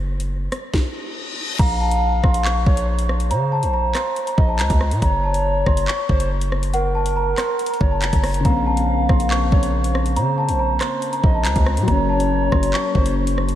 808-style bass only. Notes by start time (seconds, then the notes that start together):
Already playing: F#1
1.59 A#1
2.24 A#1
2.66 A#1
3.31 C#3
3.63 A#1
4.38 A#1
4.59 C#2
4.70 C#2
4.91 A#2
5.02 F#1
5.66 F#1
6.09 F#1
7.81 F#1
8.02 F1
8.13 F#1
8.45 A#1
9.09 A#1
9.52 A#1
10.16 C#3
10.49 A#1
11.24 A#1
11.45 C#2
11.56 C#2
11.77 A#2
11.88 F#1
12.52 F#1
12.95 F#1